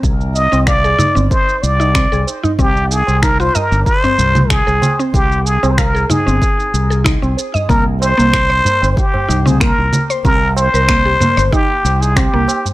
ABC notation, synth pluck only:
X:1
M:4/4
L:1/16
Q:"Swing 16ths" 1/4=94
K:Cm
V:1 name="Synth pluck"
C3 C f A E C4 E C A z E | C z3 E F e z2 C z3 A z C- | C3 C f A E C4 A E C z e | B, z2 B, z c4 z E C B, z2 c |
C3 B B, G B, c E z3 C B, z2 |]